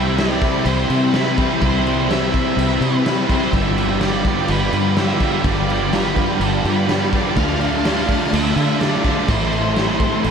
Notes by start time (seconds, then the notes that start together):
Already playing: C2 C3 E3 G3 C4 E4 E5 G5 B5
0.18 C3 E3 G3 C4 E4 D5, snare, crash
0.42 kick, crash
0.65 C2 E3 G3 C4 C5, crash
0.69 E4
0.88 C3 G3 C4 E4, crash
1.10 C3 E3 B4, snare, crash
1.15 G3 C4 E4
1.37 C3 G3 C4 E4, kick, snare, crash
1.60 C2 C3 E3 G3 C4 E4 C5, kick, crash
1.87 crash
2.09 C3 E3 G3 C4 E4 E5, snare, crash
2.34 kick, crash
2.57 C2 E3 G3 C4 E4, crash
2.81 C3 C4 E4 B4, crash
2.85 G3
3.04 C3 E3 G3, snare, crash
3.08 C4 E4
3.29 G3 C4 E4 C5, kick, crash
3.34 C3
3.53 G1 G2 D3 F3 G3 B3 F4 G4 D5 E5 G5, kick, crash
3.78 crash
4.01 G2 D3 F3 G3 B3 G4 D5, snare, crash
4.25 kick, crash
4.48 G1 F3 G3 B3 G4 B4, crash
4.73 G2 D3 F3 G3 B3 G4, crash
4.96 G2 D3 F3 G3 B3 G4 E5, snare, crash
5.01 G3
5.20 G2 D3 F3 G3 B3 G4, kick, snare, crash
5.43 G1 G2 D3 F3 G3 B3 G4 D5, kick, crash
5.70 crash
5.91 G2 D3 F3 G3 B3 G4 B4, snare, crash
6.16 kick, crash
6.40 G1 F3 G3 B3 G4, crash
6.48 A4
6.63 G2 F3 G3 B3 G4 B4, crash
6.68 D3
6.87 G2 D3 F3 G3 B3 G4, snare, crash
7.11 D3 F3 G3 B3 G4 D5, kick, snare, crash
7.15 G2 D3
7.35 D2 D3 A3 D4 F4 F5 A5, kick, crash
7.61 crash
7.83 D3 A3 D4 F4, snare, crash
8.09 kick, crash
8.32 D2 D3 A3 D4 F4 E5, crash
8.55 D3 A3 D4 F4, crash
8.80 D3 A3 D4 F4 D5, snare, crash
9.04 D3 A3 D4 F4, kick, snare, crash
9.26 A1 A2 E3 C4 A4 C5 C6, kick, crash
9.31 A3 E4
9.53 crash
9.76 A2 E3 A3 C4 E4, snare, crash
10.00 kick, crash
10.23 A1 E3 A3 C4 E4, crash